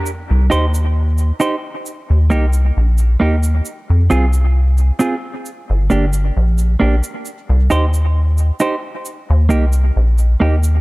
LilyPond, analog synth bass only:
\new Staff \with { instrumentName = "Analog synth bass" } { \clef bass \time 4/4 \key c \minor \tempo 4 = 67 r16 c,16 ees,4 r8. ees,16 c,8 bes,,8 ees,8 | r16 f,16 c,4 r8. g,,16 g,,8 bes,,8 bes,,16 r16 | r16 c,16 ees,4 r8. ees,16 c,8 bes,,8 ees,8 | }